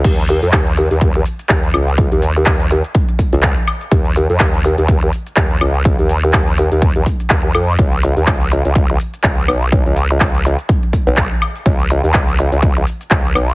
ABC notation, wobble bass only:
X:1
M:4/4
L:1/16
Q:"Swing 16ths" 1/4=124
K:Dbmix
V:1 name="Wobble bass" clef=bass
E,,3 F,, E,,3 E,,3 z2 E,,2 D,,2- | D,, E,,3 E,,3 z4 D,,2 z3 | E,,3 F,, E,,3 E,,3 z2 E,,2 D,,2- | D,, E,,3 E,,3 E,,2 E,, z2 E,,2 F,,2 |
^C,,3 ^D,, C,,3 C,,3 z2 C,,2 =B,,,2- | =B,,, ^C,,3 C,,3 z4 B,,,2 z3 | ^C,,3 ^D,, C,,3 C,,3 z2 C,,2 =B,,,2 |]